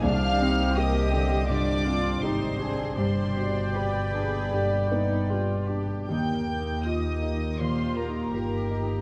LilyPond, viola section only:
\new Staff \with { instrumentName = "Viola section" } { \time 4/4 \key ees \major \tempo 4 = 80 << { g'2 f'4 ees'4 | g''2.~ g''8. r16 | g'2 g'4 bes'4 | } \\ { d'8 c'8 bes8 c'8 d'4 ees'8 c'8 | d''2.~ d''8. r16 | ees'8 bes2.~ bes8 | } >> }